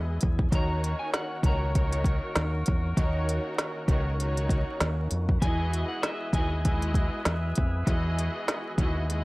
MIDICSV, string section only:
0, 0, Header, 1, 2, 480
1, 0, Start_track
1, 0, Tempo, 612245
1, 409, Time_signature, 4, 2, 24, 8
1, 7244, End_track
2, 0, Start_track
2, 0, Title_t, "String section"
2, 0, Program_c, 0, 48
2, 0, Note_on_c, 0, 56, 91
2, 0, Note_on_c, 0, 64, 93
2, 0, Note_on_c, 0, 66, 90
2, 0, Note_on_c, 0, 68, 91
2, 0, Note_on_c, 0, 75, 115
2, 112, Note_off_c, 0, 56, 0
2, 113, Note_off_c, 0, 64, 0
2, 115, Note_off_c, 0, 66, 0
2, 117, Note_off_c, 0, 68, 0
2, 119, Note_off_c, 0, 75, 0
2, 402, Note_on_c, 0, 51, 108
2, 406, Note_on_c, 0, 63, 94
2, 408, Note_on_c, 0, 66, 94
2, 412, Note_on_c, 0, 70, 91
2, 416, Note_on_c, 0, 73, 119
2, 1073, Note_off_c, 0, 51, 0
2, 1075, Note_off_c, 0, 63, 0
2, 1076, Note_off_c, 0, 66, 0
2, 1078, Note_off_c, 0, 70, 0
2, 1080, Note_off_c, 0, 73, 0
2, 1125, Note_on_c, 0, 51, 104
2, 1129, Note_on_c, 0, 63, 81
2, 1132, Note_on_c, 0, 66, 99
2, 1135, Note_on_c, 0, 70, 86
2, 1139, Note_on_c, 0, 73, 111
2, 1350, Note_off_c, 0, 51, 0
2, 1352, Note_off_c, 0, 63, 0
2, 1353, Note_off_c, 0, 66, 0
2, 1355, Note_off_c, 0, 70, 0
2, 1357, Note_off_c, 0, 73, 0
2, 1365, Note_on_c, 0, 51, 102
2, 1369, Note_on_c, 0, 63, 94
2, 1372, Note_on_c, 0, 66, 92
2, 1376, Note_on_c, 0, 70, 90
2, 1379, Note_on_c, 0, 73, 109
2, 2035, Note_off_c, 0, 51, 0
2, 2037, Note_off_c, 0, 63, 0
2, 2038, Note_off_c, 0, 66, 0
2, 2040, Note_off_c, 0, 70, 0
2, 2042, Note_off_c, 0, 73, 0
2, 2322, Note_on_c, 0, 51, 100
2, 2325, Note_on_c, 0, 63, 95
2, 2328, Note_on_c, 0, 66, 96
2, 2333, Note_on_c, 0, 70, 97
2, 2335, Note_on_c, 0, 73, 113
2, 2993, Note_off_c, 0, 51, 0
2, 2995, Note_off_c, 0, 63, 0
2, 2996, Note_off_c, 0, 66, 0
2, 2998, Note_off_c, 0, 70, 0
2, 3000, Note_off_c, 0, 73, 0
2, 3036, Note_on_c, 0, 51, 99
2, 3039, Note_on_c, 0, 63, 89
2, 3043, Note_on_c, 0, 66, 100
2, 3047, Note_on_c, 0, 70, 90
2, 3050, Note_on_c, 0, 73, 109
2, 3265, Note_off_c, 0, 51, 0
2, 3267, Note_off_c, 0, 63, 0
2, 3269, Note_off_c, 0, 66, 0
2, 3271, Note_off_c, 0, 70, 0
2, 3272, Note_off_c, 0, 73, 0
2, 3284, Note_on_c, 0, 51, 106
2, 3288, Note_on_c, 0, 63, 100
2, 3292, Note_on_c, 0, 66, 102
2, 3295, Note_on_c, 0, 70, 87
2, 3299, Note_on_c, 0, 73, 121
2, 3954, Note_off_c, 0, 51, 0
2, 3956, Note_off_c, 0, 63, 0
2, 3958, Note_off_c, 0, 66, 0
2, 3960, Note_off_c, 0, 70, 0
2, 3962, Note_off_c, 0, 73, 0
2, 4243, Note_on_c, 0, 52, 118
2, 4247, Note_on_c, 0, 64, 96
2, 4251, Note_on_c, 0, 66, 102
2, 4254, Note_on_c, 0, 68, 97
2, 4258, Note_on_c, 0, 75, 118
2, 4914, Note_off_c, 0, 52, 0
2, 4916, Note_off_c, 0, 64, 0
2, 4918, Note_off_c, 0, 66, 0
2, 4919, Note_off_c, 0, 68, 0
2, 4921, Note_off_c, 0, 75, 0
2, 4961, Note_on_c, 0, 52, 105
2, 4965, Note_on_c, 0, 64, 94
2, 4968, Note_on_c, 0, 66, 89
2, 4973, Note_on_c, 0, 68, 92
2, 4976, Note_on_c, 0, 75, 107
2, 5188, Note_off_c, 0, 52, 0
2, 5190, Note_off_c, 0, 64, 0
2, 5191, Note_off_c, 0, 66, 0
2, 5193, Note_off_c, 0, 68, 0
2, 5195, Note_off_c, 0, 75, 0
2, 5198, Note_on_c, 0, 56, 104
2, 5201, Note_on_c, 0, 64, 103
2, 5205, Note_on_c, 0, 66, 95
2, 5208, Note_on_c, 0, 68, 97
2, 5212, Note_on_c, 0, 75, 115
2, 5871, Note_off_c, 0, 56, 0
2, 5873, Note_off_c, 0, 64, 0
2, 5874, Note_off_c, 0, 66, 0
2, 5876, Note_off_c, 0, 68, 0
2, 5878, Note_off_c, 0, 75, 0
2, 6158, Note_on_c, 0, 52, 105
2, 6161, Note_on_c, 0, 64, 97
2, 6165, Note_on_c, 0, 66, 97
2, 6168, Note_on_c, 0, 68, 101
2, 6171, Note_on_c, 0, 75, 112
2, 6831, Note_off_c, 0, 52, 0
2, 6833, Note_off_c, 0, 64, 0
2, 6835, Note_off_c, 0, 66, 0
2, 6836, Note_off_c, 0, 68, 0
2, 6838, Note_off_c, 0, 75, 0
2, 6885, Note_on_c, 0, 52, 96
2, 6889, Note_on_c, 0, 64, 95
2, 6892, Note_on_c, 0, 66, 96
2, 6895, Note_on_c, 0, 68, 91
2, 6898, Note_on_c, 0, 75, 105
2, 7110, Note_off_c, 0, 52, 0
2, 7112, Note_off_c, 0, 64, 0
2, 7113, Note_off_c, 0, 66, 0
2, 7115, Note_off_c, 0, 68, 0
2, 7116, Note_off_c, 0, 75, 0
2, 7120, Note_on_c, 0, 56, 94
2, 7123, Note_on_c, 0, 64, 96
2, 7127, Note_on_c, 0, 66, 94
2, 7130, Note_on_c, 0, 68, 94
2, 7133, Note_on_c, 0, 75, 115
2, 7244, Note_off_c, 0, 56, 0
2, 7244, Note_off_c, 0, 64, 0
2, 7244, Note_off_c, 0, 66, 0
2, 7244, Note_off_c, 0, 68, 0
2, 7244, Note_off_c, 0, 75, 0
2, 7244, End_track
0, 0, End_of_file